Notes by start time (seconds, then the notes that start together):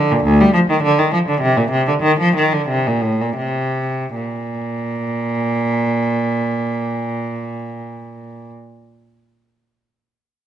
Already playing: D3
0.11 A#2
0.24 D2
0.41 G3
0.53 F3
0.70 D#3
0.82 D3
0.99 D#3
1.13 F3
1.28 D3
1.41 C3
1.57 A#2
1.71 C3
1.87 D3
2.02 D#3
2.20 F3
2.36 D#3
2.53 D3
2.68 C3
2.87 A#2
3.01 A2
3.21 A#2
3.37 C3
4.15 A#2